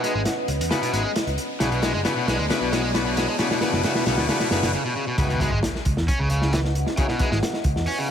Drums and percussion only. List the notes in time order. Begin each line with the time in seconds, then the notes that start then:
0.04 closed hi-hat
0.25 snare, closed hi-hat
0.48 closed hi-hat
0.61 closed hi-hat
0.71 snare, closed hi-hat
0.83 closed hi-hat
0.94 closed hi-hat
1.16 snare, closed hi-hat
1.27 closed hi-hat
1.38 closed hi-hat
1.60 snare, closed hi-hat
1.72 closed hi-hat
1.83 snare, closed hi-hat
2.05 snare, closed hi-hat
2.28 snare, closed hi-hat
2.50 snare, closed hi-hat
2.73 snare, closed hi-hat
2.95 snare, closed hi-hat
3.17 snare, closed hi-hat
3.39 snare, closed hi-hat
3.51 snare
3.61 snare, closed hi-hat
3.73 snare
3.83 snare, closed hi-hat
3.95 snare
4.06 snare, closed hi-hat
4.18 snare
4.29 snare, closed hi-hat
4.40 snare, closed hi-hat
4.51 snare, closed hi-hat
4.63 snare, closed hi-hat
5.18 kick, closed hi-hat, crash
5.30 closed hi-hat
5.40 kick, closed hi-hat
5.63 snare, closed hi-hat
5.75 snare
5.85 kick, closed hi-hat
5.97 snare
6.08 kick, closed hi-hat
6.30 closed hi-hat
6.42 snare
6.53 snare, closed hi-hat
6.65 snare
6.75 closed hi-hat
6.86 snare
6.97 kick, closed hi-hat
7.08 snare
7.19 kick, closed hi-hat
7.32 snare
7.43 snare, closed hi-hat
7.53 snare
7.64 kick, closed hi-hat
7.76 snare
7.86 open hi-hat